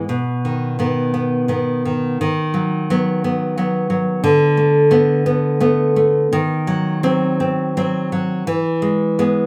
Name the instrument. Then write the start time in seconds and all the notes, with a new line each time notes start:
nylon-string guitar
0.09 B2
0.45 D#3
0.79 D#3 B3
1.14 B3
1.48 D#3 B3
1.85 D#3
2.21 D#3
2.54 F#3
2.90 F#3 B3
3.24 B3
3.58 F#3 B3
3.90 F#3
4.24 D3
4.57 A3
4.91 A3 B3
5.26 B3
5.60 A3 B3
5.96 A3
6.33 D#3
6.67 F#3
7.03 F#3 C4
7.40 C4
7.77 F#3 C4
8.12 F#3
8.47 E3
8.82 G#3
9.19 G#3 B3